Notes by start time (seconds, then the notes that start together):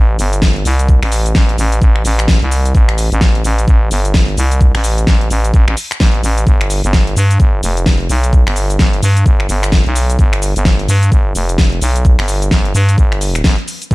Already playing: A1
0.19 G1, open hi-hat, shaker
0.33 closed hi-hat, shaker
0.42 kick, snare, shaker
0.56 closed hi-hat
0.65 C2, open hi-hat, shaker
0.79 closed hi-hat, shaker
0.89 kick, shaker
1.03 A1, finger snap, open hi-hat
1.12 open hi-hat, shaker
1.26 closed hi-hat, shaker
1.35 A1, kick, snare, shaker
1.49 closed hi-hat
1.58 A1, open hi-hat, shaker
1.72 closed hi-hat, shaker
1.82 A1, kick, shaker
1.96 finger snap
2.05 A1, open hi-hat, shaker
2.19 finger snap, closed hi-hat, shaker
2.28 kick, snare, shaker
2.42 C2, closed hi-hat
2.51 open hi-hat, shaker
2.65 closed hi-hat, shaker
2.75 A1, kick, shaker
2.89 finger snap, closed hi-hat
2.98 open hi-hat, shaker
3.12 A1, closed hi-hat, shaker
3.21 kick, snare, shaker
3.35 closed hi-hat
3.44 A1, open hi-hat, shaker
3.58 closed hi-hat, shaker
3.68 A1, kick, shaker
3.91 G1, open hi-hat, shaker
4.05 closed hi-hat, shaker
4.14 kick, snare, shaker
4.28 closed hi-hat
4.37 C2, open hi-hat, shaker
4.51 closed hi-hat, shaker
4.61 kick, shaker
4.75 A1, finger snap, open hi-hat
4.84 open hi-hat, shaker
4.98 closed hi-hat, shaker
5.07 A1, kick, snare, shaker
5.21 closed hi-hat
5.30 A1, open hi-hat, shaker
5.44 closed hi-hat, shaker
5.54 A1, kick, shaker
5.68 A1, finger snap
5.77 open hi-hat, shaker
5.91 finger snap, closed hi-hat, shaker
6.00 A1, kick, snare, shaker
6.14 closed hi-hat
6.23 A1, open hi-hat, shaker
6.38 closed hi-hat, shaker
6.47 G1, kick, shaker
6.61 finger snap, closed hi-hat
6.70 open hi-hat, shaker
6.84 G1, closed hi-hat, shaker
6.93 kick, snare, shaker
7.07 closed hi-hat
7.16 G2, open hi-hat, shaker
7.31 closed hi-hat, shaker
7.40 G1, kick, shaker
7.63 F1, open hi-hat, shaker
7.77 closed hi-hat, shaker
7.86 kick, snare, shaker
8.00 closed hi-hat
8.09 B1, open hi-hat, shaker
8.24 closed hi-hat, shaker
8.33 kick, shaker
8.47 G1, finger snap, open hi-hat
8.56 open hi-hat, shaker
8.70 closed hi-hat, shaker
8.79 G1, kick, snare, shaker
8.93 closed hi-hat
9.03 G2, open hi-hat, shaker
9.17 closed hi-hat, shaker
9.26 G1, kick, shaker
9.40 finger snap
9.49 G1, open hi-hat, shaker
9.63 finger snap, closed hi-hat, shaker
9.72 kick, snare, shaker
9.86 B1, closed hi-hat
9.96 open hi-hat, shaker
10.10 closed hi-hat, shaker
10.19 G1, kick, shaker
10.33 finger snap, closed hi-hat
10.42 open hi-hat, shaker
10.56 G1, closed hi-hat, shaker
10.65 kick, snare, shaker
10.79 closed hi-hat
10.88 G2, open hi-hat, shaker
11.03 closed hi-hat, shaker
11.12 G1, kick, shaker
11.35 F1, open hi-hat, shaker
11.49 closed hi-hat, shaker
11.58 kick, snare, shaker
11.72 closed hi-hat
11.82 B1, open hi-hat, shaker
11.96 closed hi-hat, shaker
12.05 kick, shaker
12.19 G1, finger snap, open hi-hat
12.28 open hi-hat, shaker
12.42 closed hi-hat, shaker
12.51 G1, kick, snare, shaker
12.65 closed hi-hat
12.75 G2, open hi-hat, shaker
12.89 closed hi-hat, shaker
12.98 G1, kick, shaker
13.12 finger snap, closed hi-hat
13.21 open hi-hat, shaker
13.35 finger snap, closed hi-hat, shaker
13.44 G1, kick, snare, shaker
13.58 closed hi-hat
13.68 open hi-hat, shaker
13.82 closed hi-hat, shaker
13.91 A1, kick, shaker